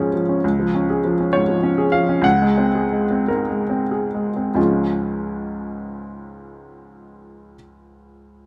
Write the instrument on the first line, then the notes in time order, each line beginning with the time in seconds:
upright piano
Already playing: C#2 G#2 F3 C#4 C#5
0.00 G#4
0.14 F3
0.29 C#4
0.44 C#2
0.59 F3
0.75 C#4
0.90 G#4
1.05 F3
1.20 C#4
1.33 G#2 C#5
1.49 F3
1.63 C#4
1.78 G#4
1.92 F3 F5
2.09 C#4
2.21 C#2 F#5
2.42 G#3
2.58 C4
2.75 G#4
2.92 G#3
3.11 C4
3.28 G#2 A#4
3.50 G#3
3.70 C4
3.91 G#4
4.14 G#3
4.36 C4
4.54 C#2 G#2 F3 G#3 C#4 F4